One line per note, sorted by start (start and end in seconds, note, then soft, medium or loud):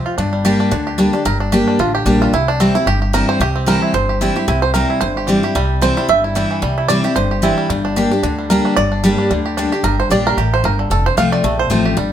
0.00 0.17 F2 medium
0.00 0.18 C4 medium
0.00 0.16 G4 medium
0.00 0.13 F5 medium
0.06 0.17 F4 medium
0.18 0.52 G1 medium
0.18 0.70 G2 medium
0.18 0.57 D4 medium
0.33 0.69 G3 medium
0.45 0.70 G3 medium
0.45 0.71 A#3 medium
0.45 0.71 D4 loud
0.45 0.84 G4 medium
0.45 0.71 G4 loud
0.60 0.71 D4 medium
0.71 1.07 D2 medium
0.71 1.23 D3 medium
0.71 0.98 D4 medium
0.87 1.23 G4 medium
0.98 1.13 G3 medium
0.98 1.13 A#3 medium
0.98 1.12 D4 medium
0.98 1.13 D4 loud
0.98 1.12 G4 medium
1.13 1.25 D4 medium
1.13 1.26 D4 soft
1.13 1.25 G4 medium
1.25 1.60 G1 medium
1.25 1.77 G2 loud
1.25 1.40 A#4 loud
1.40 1.66 D4 medium
1.52 1.78 G3 loud
1.52 1.78 A#3 medium
1.52 1.79 D4 medium
1.52 1.95 G4 medium
1.52 1.79 G4 loud
1.68 2.04 D4 medium
1.79 2.02 A1 medium
1.79 2.31 D3 medium
1.79 1.94 F4 medium
1.95 2.20 G4 medium
2.06 2.29 A#1 medium
2.06 2.32 G3 medium
2.06 2.32 A#3 loud
2.06 2.33 D4 medium
2.06 2.32 D4 medium
2.06 2.32 G4 loud
2.22 2.34 F4 medium
2.33 2.68 C2 medium
2.33 2.85 C3 medium
2.33 2.49 E4 medium
2.48 2.60 D4 loud
2.60 2.74 E3 medium
2.60 2.75 G3 medium
2.60 2.76 C4 medium
2.60 2.75 C4 medium
2.60 2.74 E4 loud
2.75 2.87 C4 medium
2.75 2.86 E4 medium
2.75 2.87 E4 medium
2.86 3.21 G1 medium
2.86 3.38 G2 medium
2.86 3.01 G4 loud
3.02 3.41 G4 medium
3.13 3.39 E3 loud
3.13 3.40 G3 loud
3.13 3.40 C4 loud
3.13 3.40 E4 loud
3.13 3.28 A#4 loud
3.29 3.40 C5 loud
3.40 3.75 C2 loud
3.40 3.92 C3 medium
3.40 3.66 G4 loud
3.56 4.77 C4 medium
3.66 3.93 E3 loud
3.66 3.93 G3 medium
3.66 3.93 C4 loud
3.66 3.93 E4 loud
3.66 3.82 A#4 loud
3.83 3.94 E4 medium
3.94 4.29 G1 medium
3.94 4.45 G2 medium
3.94 4.19 C5 medium
4.09 4.36 G4 soft
4.21 4.35 E3 medium
4.21 4.36 G3 loud
4.21 4.36 C4 medium
4.21 4.48 E4 medium
4.21 4.34 E4 loud
4.36 4.48 C4 soft
4.36 4.47 E4 medium
4.36 5.17 G4 medium
4.48 4.83 C2 medium
4.48 4.99 C3 medium
4.48 4.62 E4 medium
4.62 4.73 C5 loud
4.74 5.00 E3 medium
4.74 5.00 G3 medium
4.74 5.01 C4 loud
4.74 5.01 E4 loud
4.74 4.90 A#4 loud
4.90 6.24 E4 medium
5.01 5.36 G1 medium
5.01 5.53 G2 medium
5.01 5.29 C5 loud
5.17 5.27 G4 medium
5.27 5.43 E3 medium
5.27 5.43 G3 loud
5.27 5.43 C4 medium
5.27 5.42 E4 loud
5.27 5.42 G4 medium
5.43 5.55 C4 medium
5.43 5.55 E4 medium
5.43 6.84 G4 medium
5.55 5.90 C2 medium
5.55 6.07 C3 medium
5.55 5.97 G3 medium
5.82 5.96 E3 medium
5.82 5.97 G3 medium
5.82 5.97 C4 loud
5.82 5.96 E4 loud
5.82 6.07 C5 medium
5.97 6.36 G3 medium
5.97 6.09 C4 medium
5.97 6.08 E4 medium
6.09 6.44 G1 medium
6.09 6.60 G2 medium
6.09 6.48 E5 loud
6.24 6.60 E4 medium
6.35 6.61 E3 medium
6.35 6.61 G3 medium
6.35 6.62 G3 medium
6.35 6.62 C4 medium
6.35 6.62 E4 loud
6.51 6.87 E3 medium
6.62 6.97 C2 medium
6.62 7.14 C3 medium
6.62 7.57 G3 medium
6.78 7.14 E4 medium
6.88 7.03 E3 loud
6.88 7.04 G3 medium
6.88 7.04 C4 loud
6.88 7.03 E4 loud
6.88 7.15 D5 loud
7.04 7.16 C4 medium
7.04 7.16 E4 medium
7.04 7.31 G4 medium
7.16 7.51 G1 medium
7.16 7.67 G2 medium
7.16 7.55 C5 loud
7.31 7.96 G4 medium
7.42 7.68 E3 medium
7.42 7.69 G3 loud
7.42 7.69 C4 medium
7.42 7.70 E4 medium
7.42 7.69 E4 loud
7.58 7.69 G3 medium
7.70 8.04 G1 medium
7.70 8.21 G2 medium
7.70 8.38 G3 medium
7.85 8.11 D4 medium
7.96 8.11 G3 loud
7.96 8.11 A#3 loud
7.96 8.11 D4 loud
7.96 9.37 G4 medium
7.96 8.10 G4 loud
8.11 8.23 D4 medium
8.11 8.24 D4 medium
8.11 8.23 G4 medium
8.23 8.58 D2 medium
8.23 8.75 D3 medium
8.23 8.65 D4 medium
8.38 9.03 G3 soft
8.50 8.76 G3 medium
8.50 8.76 A#3 loud
8.50 8.76 D4 loud
8.50 8.76 G4 loud
8.50 8.78 A#4 medium
8.65 8.76 D4 medium
8.76 9.12 G1 medium
8.76 9.28 G2 medium
8.76 9.16 D5 loud
8.92 9.17 D4 medium
9.04 9.29 G3 loud
9.04 9.29 G3 medium
9.04 9.30 A#3 medium
9.04 9.30 D4 loud
9.04 9.30 G4 loud
9.18 9.55 D4 medium
9.30 9.65 D2 medium
9.30 9.82 D3 medium
9.30 9.69 G3 medium
9.46 9.71 G4 medium
9.57 9.72 G3 medium
9.57 9.72 A#3 medium
9.57 9.96 D4 medium
9.57 9.72 D4 loud
9.57 9.71 G4 loud
9.72 9.84 D4 medium
9.72 9.83 G4 medium
9.72 10.08 G4 medium
9.83 10.01 G1 medium
9.83 10.35 G2 loud
9.83 9.99 A#4 medium
10.00 10.11 C5 medium
10.10 10.33 A#1 medium
10.10 10.36 G3 medium
10.10 10.36 A#3 medium
10.10 10.37 D4 loud
10.10 10.37 G4 loud
10.10 10.26 D5 medium
10.27 10.54 A#4 loud
10.37 10.60 A1 medium
10.37 10.63 A2 medium
10.37 10.76 G4 medium
10.54 10.65 C5 medium
10.64 10.86 G1 loud
10.64 10.89 G2 medium
10.64 10.78 A#4 medium
10.79 10.91 D3 medium
10.90 11.08 F1 medium
10.90 11.42 F2 loud
10.90 11.06 A4 loud
11.06 11.17 C5 loud
11.17 11.40 C2 medium
11.17 11.43 F3 medium
11.17 11.43 A3 loud
11.17 11.43 C4 loud
11.17 11.43 F4 loud
11.17 11.32 F5 loud
11.32 11.59 D5 loud
11.43 11.66 A#1 medium
11.43 11.95 C3 medium
11.43 11.82 A3 medium
11.59 11.70 C5 medium
11.70 11.93 A1 loud
11.70 11.96 F3 medium
11.70 11.96 A3 medium
11.70 11.96 C4 medium
11.70 11.96 F4 medium
11.70 11.85 C5 medium
11.85 11.97 G4 medium
11.97 12.12 G1 medium
11.97 12.12 G2 loud
11.97 12.12 G3 medium